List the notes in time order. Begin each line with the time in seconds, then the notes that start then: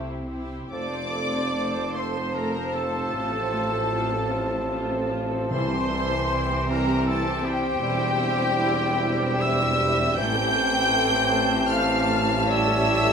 Already playing: C2 C3 A3 E4 G4 C5
0.28 E4 G4 C5
0.70 F1 F2 F3 A3 C4 A4 C5 D5 A5 D6
0.92 C4 C5
1.14 A3 A4
1.34 C4 C5
1.54 A3 A4
1.75 C4 C5
1.94 A3 A4 C5 C6
2.16 C4 C5
2.34 A3 A4 A#4 A#5
2.55 C4 C5
2.74 A3 A4 A5
2.94 C4 C5
3.13 A1 A2 F3 A3 F4
3.33 C4 A4
3.53 A3 F4
3.72 C4 A4
3.92 A3 F4
4.12 C4 A4
4.31 A3 F4
4.50 C4 A4
4.71 A3 F4
4.91 C4 A4
5.10 A3 F4
5.29 C4 A4
5.51 C2 C3 E3 G3 C4 E4 C5 C6
5.70 C4 G4
5.90 G3 E4
6.10 C4 G4
6.31 G3 E4 G5
6.50 C4 G4
6.70 G3 E4 A#4 A#5
6.88 C4 G4
7.06 G3 E4 A4 A5
7.25 C4 G4
7.44 G3 E4 G4 G5
7.63 C4 G4
7.80 E1 E2 G3 E4 G4
7.98 C4 E4
8.16 E4 G4
8.35 C4 E4
8.54 E4 G4
8.74 C4 E4
8.96 E4 G4
9.19 C4 E4
9.39 E4 G4 E5 E6
9.60 C4 E4
9.79 E4 G4
9.99 C4 E4
10.15 A1 A2 E3 A3 C4 A4 C5 G5 A5 G6
10.20 A3
10.36 C4 G4
10.55 A3 A4
10.74 C4 G4
10.92 A3 A4
11.12 C4 G4
11.33 A3 A4
11.52 C4 G4
11.70 A3 A4 F5 F6
11.90 C4 G4
12.10 A3 A4
12.29 C4 G4
12.47 G3 C#4 E4 G4 C#5 E5 E6
12.66 C#4 A4
12.85 E4 G4
13.02 C#4 A4